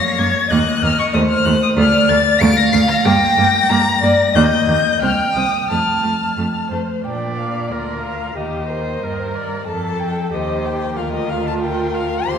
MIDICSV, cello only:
0, 0, Header, 1, 2, 480
1, 0, Start_track
1, 0, Key_signature, -2, "major"
1, 0, Tempo, 640342
1, 382, Time_signature, 2, 2, 24, 8
1, 3262, Tempo, 675676
1, 5182, Tempo, 654308
1, 9092, End_track
2, 0, Start_track
2, 0, Title_t, "Cello"
2, 0, Program_c, 0, 42
2, 141, Note_on_c, 0, 42, 82
2, 201, Note_off_c, 0, 42, 0
2, 384, Note_on_c, 0, 39, 94
2, 444, Note_off_c, 0, 39, 0
2, 621, Note_on_c, 0, 39, 76
2, 681, Note_off_c, 0, 39, 0
2, 859, Note_on_c, 0, 39, 92
2, 919, Note_off_c, 0, 39, 0
2, 1093, Note_on_c, 0, 39, 84
2, 1153, Note_off_c, 0, 39, 0
2, 1328, Note_on_c, 0, 38, 104
2, 1388, Note_off_c, 0, 38, 0
2, 1570, Note_on_c, 0, 38, 83
2, 1630, Note_off_c, 0, 38, 0
2, 1812, Note_on_c, 0, 38, 102
2, 1872, Note_off_c, 0, 38, 0
2, 2047, Note_on_c, 0, 38, 86
2, 2107, Note_off_c, 0, 38, 0
2, 2287, Note_on_c, 0, 43, 110
2, 2347, Note_off_c, 0, 43, 0
2, 2531, Note_on_c, 0, 43, 84
2, 2591, Note_off_c, 0, 43, 0
2, 2772, Note_on_c, 0, 43, 97
2, 2832, Note_off_c, 0, 43, 0
2, 3013, Note_on_c, 0, 43, 79
2, 3073, Note_off_c, 0, 43, 0
2, 3263, Note_on_c, 0, 39, 106
2, 3320, Note_off_c, 0, 39, 0
2, 3497, Note_on_c, 0, 39, 80
2, 3554, Note_off_c, 0, 39, 0
2, 3738, Note_on_c, 0, 36, 86
2, 3795, Note_off_c, 0, 36, 0
2, 3978, Note_on_c, 0, 36, 67
2, 4035, Note_off_c, 0, 36, 0
2, 4225, Note_on_c, 0, 41, 73
2, 4282, Note_off_c, 0, 41, 0
2, 4461, Note_on_c, 0, 41, 52
2, 4518, Note_off_c, 0, 41, 0
2, 4699, Note_on_c, 0, 41, 65
2, 4755, Note_off_c, 0, 41, 0
2, 4938, Note_on_c, 0, 41, 47
2, 4994, Note_off_c, 0, 41, 0
2, 5174, Note_on_c, 0, 46, 48
2, 5658, Note_on_c, 0, 38, 50
2, 5669, Note_off_c, 0, 46, 0
2, 6136, Note_off_c, 0, 38, 0
2, 6140, Note_on_c, 0, 39, 46
2, 6614, Note_off_c, 0, 39, 0
2, 6623, Note_on_c, 0, 43, 47
2, 7098, Note_off_c, 0, 43, 0
2, 7109, Note_on_c, 0, 41, 53
2, 7578, Note_off_c, 0, 41, 0
2, 7584, Note_on_c, 0, 39, 58
2, 8053, Note_on_c, 0, 38, 58
2, 8064, Note_off_c, 0, 39, 0
2, 9014, Note_off_c, 0, 38, 0
2, 9018, Note_on_c, 0, 39, 76
2, 9092, Note_off_c, 0, 39, 0
2, 9092, End_track
0, 0, End_of_file